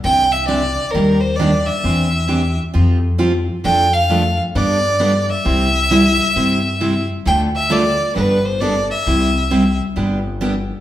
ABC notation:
X:1
M:4/4
L:1/8
Q:"Swing" 1/4=133
K:C
V:1 name="Fiddle"
g e d2 _B c d e- | e3 z4 z | g f2 z d3 e- | e6- e z |
g e d2 B c d e- | e3 z4 z |]
V:2 name="Steel-string acoustic guitar"
[C,E,DG] z [C,E,DG] z [_E,G,_B,DG] z [E,G,B,DG] z | [E,CDG] z [E,CDG] z [F,CFG] z [F,CFG] z | [F,A,DA] z [F,A,DA] z [G,B,DA] z [G,B,DA] z | [C,G,CEG] z [C,G,CEG] z [C,G,CEG] z [C,G,CEG] z |
[D,A,DFA] z [D,A,DFA] z [G,B,DA] z [G,B,DA] z | [C,G,CEG] z [C,G,CEG] z [D,G,B,DG] z [D,G,B,DG] z |]
V:3 name="Upright bass" clef=bass
C,,4 _E,,4 | E,,4 F,,4 | F,,4 G,,4 | C,,4 G,,4 |
D,,4 G,,,4 | C,,4 G,,,4 |]